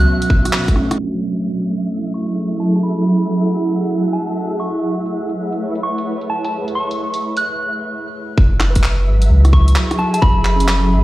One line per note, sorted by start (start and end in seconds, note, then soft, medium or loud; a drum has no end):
0.00 0.99 B2 medium
0.00 1.13 F#3 medium
0.00 2.33 B3 medium
0.00 0.64 C#4 medium
0.00 2.18 F#4 medium
0.00 0.98 E5 medium
0.00 0.30 F#6 medium
0.22 closed hi-hat soft
0.30 kick loud
0.45 cross-stick soft
0.45 closed hi-hat medium
0.53 clap loud
0.68 1.19 A3 medium
0.68 kick medium
0.68 closed hi-hat soft
0.76 1.21 C#4 medium
0.76 cross-stick soft
0.81 1.24 D4 medium
0.91 cross-stick medium
0.91 closed hi-hat medium
0.99 4.68 F#3 medium
0.99 7.45 E5 medium
1.14 2.56 F#3 medium
1.14 closed hi-hat soft
1.21 7.45 E4 medium
1.40 6.19 A4 medium
1.60 closed hi-hat soft
1.70 3.19 A3 soft
1.70 7.45 F#5 medium
1.83 6.19 G#4 medium
1.83 closed hi-hat soft
2.06 closed hi-hat soft
2.14 2.39 C#6 medium
2.60 2.70 A5 medium
2.75 2.81 A5 medium
2.75 closed hi-hat medium
2.83 3.49 B5 medium
2.99 closed hi-hat soft
3.22 closed hi-hat medium
3.45 closed hi-hat soft
3.67 closed hi-hat medium
3.74 4.87 E4 medium
3.91 closed hi-hat soft
4.13 4.37 A5 medium
4.13 closed hi-hat soft
4.36 closed hi-hat soft
4.59 4.74 C#6 medium
4.59 closed hi-hat medium
4.68 7.45 A3 medium
4.83 7.45 B4 medium
4.83 7.45 C#5 medium
4.83 closed hi-hat soft
5.06 closed hi-hat soft
5.29 closed hi-hat soft
5.52 closed hi-hat soft
5.75 closed hi-hat soft
5.83 6.08 C#6 medium
5.98 closed hi-hat soft
6.21 closed hi-hat soft
6.30 6.39 A5 medium
6.45 6.50 A5 medium
6.45 closed hi-hat medium
6.57 7.41 G#4 soft
6.62 7.44 B4 soft
6.67 7.46 C#5 soft
6.67 closed hi-hat soft
6.75 7.22 C#6 medium
6.91 closed hi-hat soft
7.14 closed hi-hat soft
7.37 7.68 F#6 medium
7.37 closed hi-hat soft
8.37 9.08 F#1 loud
8.37 11.04 F#3 medium
8.37 11.04 E5 medium
8.37 kick loud
8.60 cross-stick medium
8.60 clap medium
8.70 10.15 B4 medium
8.75 kick medium
8.75 closed hi-hat medium
8.81 11.04 G#4 medium
8.81 clap loud
9.07 9.28 G#1 medium
9.22 closed hi-hat medium
9.30 9.75 C#2 medium
9.45 10.88 E4 medium
9.45 cross-stick medium
9.45 closed hi-hat soft
9.53 11.04 A4 medium
9.53 9.77 C#6 medium
9.53 kick loud
9.68 closed hi-hat medium
9.76 clap loud
9.91 cross-stick medium
9.91 closed hi-hat soft
9.99 10.09 A5 medium
9.99 cross-stick soft
10.14 10.19 A5 medium
10.14 closed hi-hat medium
10.22 10.93 F#1 medium
10.22 10.88 B5 medium
10.22 kick loud
10.45 clap medium
10.56 11.04 C#4 medium
10.60 closed hi-hat medium
10.68 clap loud
10.92 11.04 G#1 medium